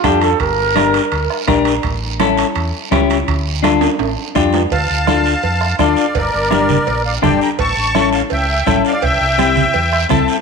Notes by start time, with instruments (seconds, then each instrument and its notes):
0.04 fingered electric bass F2, clean electric guitar D4 F4 A4, trombone G4, bombo low, bombo rim, high conga, high timbale, short guiro
0.21 trombone A4, high timbale, short guiro
0.40 fingered electric bass G1, trombone A#4, bombo low, high conga, high timbale, long guiro
0.75 clean electric guitar D4 G4 A#4, bombo rim, high conga, high timbale, short guiro
0.94 high timbale, short guiro
1.12 fingered electric bass D2, high conga, high timbale, long guiro
1.30 bombo rim
1.48 fingered electric bass A#1, clean electric guitar D4 G4 A#4, bombo low, bombo rim, high conga, high timbale, short guiro
1.65 high timbale, short guiro
1.83 fingered electric bass A1, bombo low, high conga, high timbale, long guiro
2.20 clean electric guitar C#4 E4 A4, bombo rim, high conga, high timbale, short guiro
2.38 high timbale, short guiro
2.55 fingered electric bass E2, high conga, high timbale, long guiro
2.91 fingered electric bass C#2, clean electric guitar C#4 E4 G4, bombo low, bombo rim, high conga, high timbale, low timbale, short guiro
3.10 high timbale, short guiro
3.28 fingered electric bass D2, bombo low, high conga, high timbale, long guiro
3.63 clean electric guitar D4 F4 A4, bombo rim, high conga, high timbale, short guiro
3.81 high timbale, short guiro
3.99 fingered electric bass A1, high conga, high timbale, long guiro
4.35 fingered electric bass F2, clean electric guitar D4 F4 G4, bombo low, bombo rim, high conga, short guiro
4.53 low timbale, short guiro
4.70 fingered electric bass D2, accordion F5 A5, bombo low, cowbell, high conga, long guiro
4.90 fingered electric bass D2
5.07 clean electric guitar D4 F4 A4, bombo rim, high conga, short guiro
5.26 short guiro
5.43 fingered electric bass F2, cowbell, high conga, long guiro
5.61 bombo rim
5.79 fingered electric bass D2, clean electric guitar D4 F4 A4, accordion D5 F5, bombo low, bombo rim, high conga, short guiro
5.96 short guiro
6.15 fingered electric bass G1, accordion A#4 D5, bombo low, cowbell, high conga, long guiro
6.34 fingered electric bass G1
6.50 clean electric guitar D4 G4 A#4, bombo rim, high conga, short guiro
6.69 low conga, short guiro
6.87 fingered electric bass A#1, cowbell, high conga, long guiro
7.06 accordion D5 F5
7.22 fingered electric bass G1, clean electric guitar D4 G4 A4, accordion D5 G5, bombo low, bombo rim, high conga, low conga, short guiro
7.41 accordion G5 A#5, short guiro
7.59 fingered electric bass A1, accordion A5 C#6, bombo low, cowbell, high conga, long guiro
7.77 fingered electric bass A1
7.95 clean electric guitar C#4 E4 A4, bombo rim, high conga, short guiro
8.13 accordion F5 A5, short guiro
8.30 fingered electric bass C#2, accordion E5 G5, cowbell, high conga, long guiro
8.66 fingered electric bass A1, clean electric guitar C#4 E4 A4, bombo low, bombo rim, high conga, short guiro
8.85 accordion D5 F5, short guiro
9.02 fingered electric bass C2, accordion E5 G5, bombo low, cowbell, high conga, long guiro
9.21 fingered electric bass C2
9.38 clean electric guitar C4 E4 G4, bombo rim, high conga, short guiro
9.56 low conga, short guiro
9.74 fingered electric bass E2, cowbell, high conga, long guiro
9.93 bombo rim
10.09 fingered electric bass C2, clean electric guitar C4 E4 A4, accordion E5 A5, bombo low, bombo rim, high conga, low conga, short guiro
10.28 accordion E5 G5, short guiro